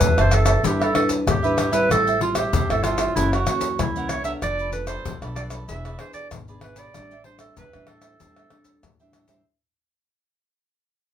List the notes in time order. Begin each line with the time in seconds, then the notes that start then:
Already playing: C4 G4 B4
0.00 E2 E3 G4 C5 E5 A5, pandeiro, maracas, surdo
0.17 F#1 C4 G4 B4 C5 E5 A5, pandeiro, tamborim, maracas
0.31 G4 A4 C5 E5 A5, pandeiro, tamborim, maracas, surdo
0.45 C5 E5 A5, pandeiro, tamborim, maracas
0.63 G1 G3 D4 E4 G4 B4 E5, pandeiro, maracas, surdo
0.80 G4 A4 B4 E5, pandeiro, tamborim, maracas
0.94 D4 E4 A4 B4, muted cavaquinho stroke, pandeiro, tamborim, surdo
1.09 pandeiro, maracas, surdo
1.27 G#1 G3 G4, pandeiro, tamborim, maracas, surdo
1.43 D4 E4 G4 B4 E5, pandeiro, maracas
1.57 D4 G4 B4 E5, pandeiro, tamborim, maracas
1.71 G3 C4 E4 G4 B4 E5, pandeiro, maracas, surdo
1.89 A1 A2 A4 C5 E5 G5, pandeiro, tamborim, maracas, surdo
2.07 C5 E5 G5, pandeiro, maracas
2.20 G3 C4 E4 F4, muted cavaquinho stroke, pandeiro
2.35 G4 C5 E5 G5, pandeiro, tamborim, maracas, surdo
2.53 E2 A4 C5 E5 G5, pandeiro, maracas, surdo
2.69 G1 G3 C4 E4 A4 C5 E5 G5, pandeiro, tamborim, maracas
2.83 F4 A4 C5 E5 G5, pandeiro, tamborim, maracas
2.98 C5 E5 G5, pandeiro, tamborim, maracas
3.16 F#1 F#2 E3 A#3 C#4 E4 A#4 C#5 F#5, pandeiro, maracas, surdo
3.32 F#4 A#4 C#5 F#5, pandeiro, tamborim, maracas
3.47 E3 A#3 C#4 F#4, muted cavaquinho stroke, pandeiro, tamborim, maracas, surdo
3.61 pandeiro, maracas, surdo
3.79 C2 E4, pandeiro, tamborim, maracas, surdo
3.95 E3 A#3 C#4 A#4 C#5 F#5, pandeiro, maracas
4.09 E4 A#4 C#5 F#5, pandeiro, tamborim, maracas
4.23 B3 D4 A4 A#4 C#5 E5 F#5, pandeiro, maracas, surdo
4.42 F1 F3 F4 A4 B4 D5, pandeiro, tamborim, maracas, surdo
4.59 A4 B4 D5, pandeiro, maracas
4.71 B3 D4 A4 B4, muted cavaquinho stroke, pandeiro, maracas
4.87 A4 B4 C5 D5, pandeiro, tamborim, maracas, surdo
5.05 F1 F3 F4 A4 B4 D5, pandeiro, maracas, surdo
5.22 B1 B3 D4 A4 B4 D5, pandeiro, tamborim, maracas
5.36 F4 A4 B4 D5, pandeiro, tamborim, maracas
5.50 A4 B4 D5, pandeiro, tamborim, maracas
5.68 E1 E3 B3 D4 E4 G#4 B4 D5 E5, pandeiro, maracas, surdo
5.85 G#4 B4 D5, pandeiro, tamborim, maracas
5.99 B3 D4 G#4 C5, muted cavaquinho stroke, pandeiro, tamborim, surdo
6.13 D5, pandeiro, maracas, surdo
6.31 G#1 B2, pandeiro, tamborim, maracas, surdo
6.48 B3 D4 G#4 B4 D5, pandeiro, maracas
6.61 E4 G#4 B4 D5, pandeiro, tamborim
6.76 G#4 B4 D5, pandeiro, maracas, surdo
6.94 A1 A2 G3 C4 D4 A4 C5 E5 G5, pandeiro, tamborim, maracas, surdo
7.11 C5 E5 G5, pandeiro, maracas
7.24 G3 C4 D4 C5, pandeiro
7.39 A4 C5 E5 G5, pandeiro, tamborim, maracas, surdo
7.57 E2 E3 A4 B4 C5 E5 G5, pandeiro, maracas, surdo
7.73 A2 G3 C4 D4 C5 E5 G5, pandeiro, tamborim, maracas
7.87 A4 C5 E5 G5, pandeiro, tamborim
8.02 C5 E5 G5, pandeiro, tamborim, maracas
8.20 E2 A2 G3 C4 D4 A4 C5 E5 G5, pandeiro, maracas, surdo
8.36 C5 E5 G5, pandeiro, tamborim, maracas
8.50 G3 C4 D4, muted cavaquinho stroke, pandeiro, tamborim, surdo
8.65 pandeiro, maracas, surdo
8.83 A2 E3, pandeiro, tamborim, maracas, surdo
9.00 G3 C4 D4 C5 E5 G5, pandeiro, maracas
9.13 A4 C5 E5 G5, pandeiro, tamborim, maracas
9.28 G3 C4 D4 C5 E5 G5, pandeiro, maracas, surdo